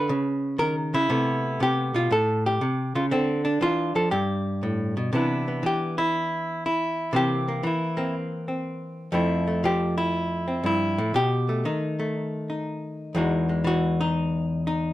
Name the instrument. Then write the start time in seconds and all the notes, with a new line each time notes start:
hollow-body jazz guitar
Already playing: B4
0.09 C#3
0.58 D#3 A#4
0.94 C#3 E4
1.10 C3 A3 B3
1.60 C3 G4
1.94 B2 F4
2.11 A2 A4
2.46 G4
2.61 C3
2.95 C#3 F4
3.11 D3 C4
3.45 D4
3.61 E3 F4
3.95 F3 A4
4.11 G2 G4
4.63 A2
4.97 B2
5.13 C3 E3 B3 D4 E4
5.48 B3
5.63 E3 G4
5.98 E4
6.66 E4
7.13 C3 E3 A#3 C4 G4
7.48 A#3
7.63 E3 E4
7.97 A#3 C4
8.48 C4
9.12 F2 F3 A3 C4 E4
9.48 A3
9.64 F3 G4
9.98 E4
10.48 C4
10.64 G2 E4
10.98 A2
11.14 B2 G4
11.49 A3
11.65 D#3 D#4
12.00 A3
12.50 D#4
13.15 E2 E3 G#3 D#4 F#4
13.49 G#3
13.64 E3 F#4
14.01 D#4
14.67 D#4